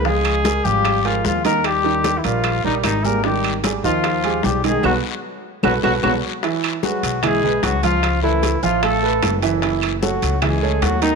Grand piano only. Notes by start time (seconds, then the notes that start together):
0.05 F3 F4 F5
0.46 G#3 G#4 A#4
0.65 F3 F4 F5
1.05 G#3 G#4 A#4
1.45 D#3 D#4 D#5
1.84 D#3 D#4 D#5
2.25 G3 G4 A#4
2.64 G3 G4 A#4
3.04 G3 G4 G#4
3.25 D#3 D#4 D#5
3.65 G3 G4 G#4
3.85 D#3 D#4 D#5
4.24 G#3 G4 G#4
4.64 D#3 D#4 D#5
4.84 F#4 A4 B4
5.64 F#4 A4 B4
5.84 F#4 A4 B4
6.03 F#4 A4 B4
6.44 E3 E4 E5
6.84 G#3 G#4 B4
7.23 E3 E4 E5
7.44 G#3 G#4 B4
7.83 F3 F4 F5
8.24 A3 A4 B4
8.63 F3 F4 F5
9.03 A3 A4 B4
9.43 E3 E4 E5
9.62 E3 E4 E5
10.03 A3 A4 C#5
10.43 E3 E4 E5
10.63 A3 A4 C#5
11.02 D#3 D#4 D#5